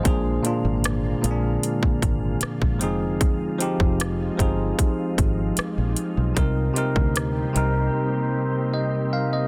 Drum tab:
HH |x-x-x-x-x-x-x-x-|x-x-x-x-x-x-x-x-|x-x-x-x---------|
SD |----r-------r---|----r-------r---|----r-----------|
BD |o--------oo--o--|o--o--o-o-o-----|o--o------------|